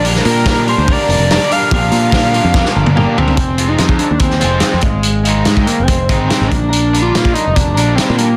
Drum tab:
HH |o-o-o-o-o-o-o-o-|o-o-o-o---------|x-x-x-x-x-x-x-x-|x-x-x-x-x-x-x-x-|
SD |-o--o-------o---|----o---oo------|----o----o--o---|----o-------o---|
T1 |----------------|-----------o----|----------------|----------------|
T2 |----------------|------------o---|----------------|----------------|
FT |----------------|--------------oo|----------------|----------------|
BD |----o---o-------|o---o---o-------|o----o--o-----o-|-----o--o-o---o-|

HH |x-x-x-x-x-x-x-x-|
SD |----o-------o---|
T1 |----------------|
T2 |----------------|
FT |----------------|
BD |-----o--o-------|